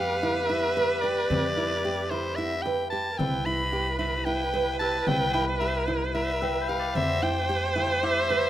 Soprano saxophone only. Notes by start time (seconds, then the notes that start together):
Already playing: F5
0.47 E5
1.01 D5
2.10 C5
2.35 E5
2.62 G5
2.90 A5
3.18 G5
3.45 B5
3.98 B5
4.25 G5
4.79 A5
5.07 G5
5.33 G5
5.60 E5
6.15 E5
6.69 F5
6.95 E5
7.23 G5
7.77 G5
8.05 E5